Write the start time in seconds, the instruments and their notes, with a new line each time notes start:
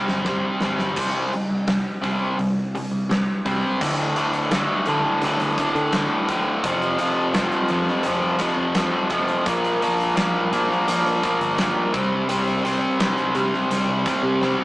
Already playing: overdriven electric guitar C3 G3 C4
0.08 picked electric bass G1, snare
0.25 overdriven electric guitar C3 G3 C4, kick, snare
0.61 picked electric bass G1, overdriven electric guitar C3 G3 C4, snare
0.79 snare
0.96 picked electric bass C2, overdriven electric guitar C3 G3 C4, kick, crash
1.33 overdriven electric guitar C3 G3, open hi-hat
1.51 picked electric bass C2
1.67 overdriven electric guitar C3 G3, snare, open hi-hat
2.02 picked electric bass C2, overdriven electric guitar C3 G3 C4, kick, open hi-hat
2.38 picked electric bass C2, overdriven electric guitar C3 G3, open hi-hat
2.75 overdriven electric guitar C3 G3, open hi-hat
2.92 picked electric bass C2
3.09 overdriven electric guitar C3 G3, snare, open hi-hat
3.45 picked electric bass C2, overdriven electric guitar C3 G3 C4, kick, open hi-hat
3.81 overdriven electric guitar D2 A2 D3, picked electric bass D2, kick, crash
3.99 closed hi-hat
4.16 overdriven electric guitar D2 A2 D3, closed hi-hat
4.33 closed hi-hat
4.51 picked electric bass D2, overdriven electric guitar D2 A2 D3, snare, closed hi-hat
4.86 overdriven electric guitar D2 A2 D3, picked electric bass D3, closed hi-hat
5.22 picked electric bass D2, overdriven electric guitar D2 A2 D3, closed hi-hat
5.40 picked electric bass D2, closed hi-hat
5.58 overdriven electric guitar D2 A2 D3, kick, closed hi-hat
5.75 picked electric bass D3, closed hi-hat
5.93 overdriven electric guitar D2 A2 D3, snare, closed hi-hat
6.29 overdriven electric guitar D2 A2 D3, kick, closed hi-hat
6.64 picked electric bass F1, overdriven electric guitar F2 C3 F3, kick, closed hi-hat
6.82 closed hi-hat
6.99 overdriven electric guitar F2 C3 F3, closed hi-hat
7.34 picked electric bass F1, overdriven electric guitar F2 C3 F3, snare, closed hi-hat
7.52 closed hi-hat
7.68 picked electric bass F2, overdriven electric guitar F2 C3 F3, closed hi-hat
7.88 snare
8.03 picked electric bass F1, overdriven electric guitar F2 C3 F3, closed hi-hat
8.22 picked electric bass F1
8.39 overdriven electric guitar F2 C3 F3, kick, closed hi-hat
8.56 picked electric bass F2
8.75 overdriven electric guitar F2 C3 F3, snare, closed hi-hat
9.10 overdriven electric guitar F2 C3 F3, kick, closed hi-hat
9.28 closed hi-hat
9.46 picked electric bass A#1, overdriven electric guitar A#2 F3 A#3, kick, closed hi-hat
9.64 closed hi-hat
9.82 overdriven electric guitar A#2 F3 A#3, closed hi-hat
10.00 closed hi-hat
10.16 picked electric bass A#1, overdriven electric guitar A#2 F3 A#3, snare, closed hi-hat
10.52 overdriven electric guitar A#2 F3 A#3, picked electric bass A#2, closed hi-hat
10.71 snare
10.87 picked electric bass A#1, overdriven electric guitar A#2 F3 A#3, closed hi-hat
11.05 picked electric bass A#1, closed hi-hat
11.23 overdriven electric guitar A#2 F3 A#3, kick, closed hi-hat
11.39 picked electric bass G1, closed hi-hat
11.58 overdriven electric guitar A#2 F3 A#3, snare, closed hi-hat
11.93 picked electric bass C2, overdriven electric guitar C3 G3 C4, kick, closed hi-hat
12.29 overdriven electric guitar C3 G3 C4, closed hi-hat
12.47 closed hi-hat
12.64 overdriven electric guitar C3 G3 C4, closed hi-hat
12.99 picked electric bass C2, overdriven electric guitar C3 G3 C4, snare, closed hi-hat
13.18 closed hi-hat
13.35 overdriven electric guitar C3 G3 C4, picked electric bass C3, closed hi-hat
13.54 snare
13.70 picked electric bass C2, overdriven electric guitar C3 G3 C4, closed hi-hat
13.87 picked electric bass C2
14.06 overdriven electric guitar C3 G3 C4, kick, closed hi-hat
14.23 picked electric bass C3
14.41 overdriven electric guitar C3 G3 C4, snare